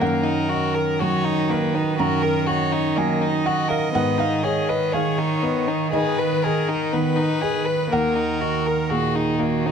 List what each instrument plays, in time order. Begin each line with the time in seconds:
0.00 felt piano F#2 F#5, cello D#3, violin A#3, viola A#4
0.23 violin D#4
0.49 violin F#4, felt piano D#5
0.75 violin A#4
1.00 felt piano F#3, violin F#4, viola C#5
1.24 violin D#4
1.50 violin A#3, viola B4, felt piano D#5
1.75 violin D#4
1.99 felt piano F#2 A#5, violin F#4, viola A#4
2.23 violin A#4
2.46 felt piano D#4, violin F#4, viola C#5
2.72 violin D#4
2.96 felt piano F#3 G#5, violin A#3, viola D#5
3.21 violin D#4
3.46 violin F#4, felt piano D#5 F#5
3.68 violin A#4, felt piano F5
3.94 felt piano G#2 F#5, cello D#3, violin B3
4.18 violin D#4, felt piano F5
4.43 violin G#4, felt piano C#5 D#5
4.69 violin B4, felt piano D#5
4.92 felt piano D#3 F5, violin G#4, viola C#5
5.18 violin D#4
5.43 violin B3, felt piano D#5
5.68 violin D#4
5.93 felt piano D#3 D#5, violin G#4, viola B4
6.18 violin B4
6.43 violin G#4, viola A#4, felt piano D#5
6.69 violin D#4
6.93 felt piano D#3, violin B3, viola B4
7.16 violin D#4
7.41 violin G#4, felt piano D#5
7.65 violin B4
7.91 felt piano D#2 F#5, cello D#3, violin A#3, viola A#4
8.16 violin D#4
8.41 violin F#4, felt piano D#5
8.66 violin A#4
8.90 felt piano A#2, violin F#4, viola G#4
9.15 violin D#4
9.39 violin A#3, viola F#4, felt piano D#5
9.66 violin D#4